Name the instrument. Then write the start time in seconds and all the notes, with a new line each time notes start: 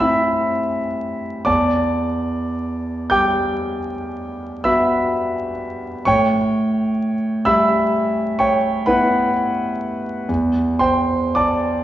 grand piano
Already playing: A2 G3 C5 G5 C6
0.00 C4 E4 E5 B5 E6
1.45 E2 D5 A5 D6
3.10 G3 G5 D6 G6
4.64 B3 F#4 E5 B5 E6
6.05 A2 C#5 G5 C#6
7.45 G3 E5 B5 E6
8.39 C#5 G5 C#6
8.86 B3 E4 B4 F#5 B5
10.29 E2
10.79 C5 G5 C6
11.35 D5 A5 D6